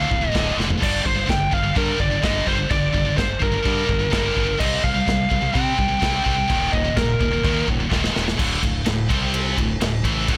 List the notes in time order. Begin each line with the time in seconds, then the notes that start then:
Already playing: F5
0.08 D1 D2 A2, kick
0.21 D2 A2
0.29 D2 A2 D3 D#5
0.35 D1, kick, snare, china
0.56 F1 D2 A2 D3, snare
0.67 D2 A2, floor tom
0.79 G1 G2 D3 G3, kick
0.83 D5, crash, china
1.03 G1 G2 D3 C5, kick
1.14 G2 D3
1.26 G1 G2 D3 G5, kick, snare, china
1.51 G1 G2 D3 F5, kick
1.63 G2 D3
1.75 G2 D3 G3 A#4, kick, china
1.99 G1 G2 D3 D5, kick
2.12 G2 D3
2.23 G1 G2 D3 G3 D#5, kick, snare, china
2.47 G1 G2 D3 G3 C5, kick
2.57 G2 D3
2.69 G1 G2 D3 D5, kick, china
2.93 G1 G2 D3, kick
3.05 G2 D3
3.16 G1 G2 D3 C5, kick, snare, china
3.39 G1 G2 D3 A#4, kick
3.52 G2 D3
3.63 G2 D3 G3, kick, china
3.86 G1 G2 D3, kick
3.99 G2 D3
4.10 G1 G2 D3 G3 A#4, kick, snare, china
4.33 G1 G2 D3 G3, kick
4.47 G2 D3
4.57 C2 C3 G3 C4 D#5, kick, crash, china
4.82 C2 C3 G3 F5, kick
4.94 C3 G3
5.06 C2 C3 G3, kick, snare, china
5.30 C2 C3 G3, kick
5.41 C3 G3
5.53 C3 G3 C4 G5, kick, china
5.77 C2 C3 G3, kick
5.88 C3 G3
6.00 C2 C3 G3 C4, kick, snare, china
6.23 C2 C3 G3 C4 G5, kick
6.36 C3 G3
6.47 D#1 D#2 A#2 D#3, kick, china
6.71 D#1 D#2 A#2 D#5, kick
6.85 D#2 A#2
6.96 D#1 D#2 A#2 A#4, kick, snare, china
7.20 D#1 D#2 A#2, kick
7.33 D#2 A#2
7.44 D#2 A#2 D#3, kick, china
7.67 D#1 D#2 A#2, kick
7.80 D#2 A#2
7.91 D#1 D#2 A#2 D#3, kick, snare
8.04 snare
8.14 D#1 D#2 A#2 D#3, snare
8.25 D#2 A#2, snare
8.37 D1 D2 A2 D3, kick, crash
8.62 D1 D2 A2, kick, ride
8.84 D1 D2 A2, snare, ride
9.09 C2 C3 G3 C4, kick, ride
9.34 ride
9.58 D1 D2 A2, kick, ride
9.81 D1 D2 A2, snare, ride
10.04 A1 A2 E3 A3, kick, ride
10.28 D1 D2 A2 D3, kick, ride